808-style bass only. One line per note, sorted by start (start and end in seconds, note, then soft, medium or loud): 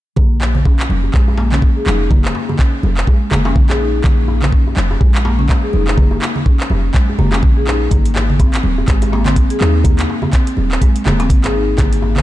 0.17 0.86 A#1 medium
0.89 1.10 F1 medium
1.14 1.72 A#1 medium
1.86 2.32 F1 medium
2.83 3.03 F1 medium
3.31 3.57 F1 loud
3.56 4.01 A#1 medium
4.04 4.74 A#1 loud
4.77 4.97 F1 medium
5.01 5.59 A#1 loud
5.73 6.19 F1 medium
6.70 6.90 F1 medium
7.18 7.44 F1 loud
7.43 7.88 A#1 medium
7.91 8.61 G#1 medium
8.64 8.84 D#1 medium
8.88 9.46 G#1 loud
9.61 10.06 D#2 medium
10.57 10.78 D#1 medium
11.06 11.32 D#1 medium
11.30 11.75 G#1 medium
11.78 12.22 G#1 loud